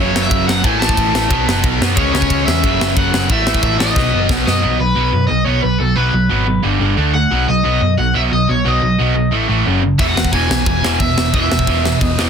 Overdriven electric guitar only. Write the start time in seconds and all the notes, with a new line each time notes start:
0.00 C#5
0.23 E5
0.48 F#5
0.64 G#5
0.80 A5
1.96 C#5
2.13 C#5
2.46 E5
2.97 F#5
3.32 E5
3.63 E5
3.79 D#5
4.47 D#5
4.80 B4
5.27 D#5
5.45 C#5
5.62 B4
5.78 A4
5.96 B4
7.14 F#5
7.48 D#5
7.98 F#5
8.16 E5
8.33 D#5
8.49 C#5
8.68 D#5
10.00 E5
10.08 F#5
10.33 G#5
10.67 G#5
11.00 E5
11.34 E5
11.99 D#5